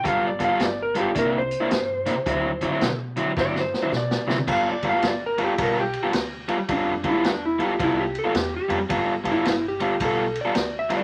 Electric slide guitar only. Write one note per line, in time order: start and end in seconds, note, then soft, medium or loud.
0.08 0.25 F5 medium
0.27 0.43 D5 medium
0.44 0.61 F5 medium
0.65 0.80 D5 medium
0.82 0.99 A#4 medium
1.00 1.17 G4 medium
1.19 1.35 A#4 loud
1.38 2.98 C5 loud
3.40 3.57 D5 loud
3.60 3.94 C5 medium
3.97 4.48 D5 loud
4.53 4.68 F5 medium
4.72 4.87 D5 medium
4.89 5.05 F5 medium
5.08 5.23 D5 medium
5.26 5.42 A#4 medium
5.44 5.60 G4 medium
5.63 5.78 A#4 medium
5.80 6.08 G4 medium
6.72 7.06 D4 medium
7.09 7.25 E4 medium
7.27 7.44 D4 medium
7.45 7.62 E4 medium
7.64 7.80 G4 medium
7.83 7.99 E4 loud
8.00 8.17 G4 medium
8.19 8.35 A4 medium
8.38 8.54 G4 medium
8.56 8.84 G4 medium
9.32 9.65 E4 loud
9.68 10.02 G4 medium
10.05 10.38 A4 medium
10.41 10.75 D5 medium
10.79 10.94 E5 medium
10.97 11.04 D5 medium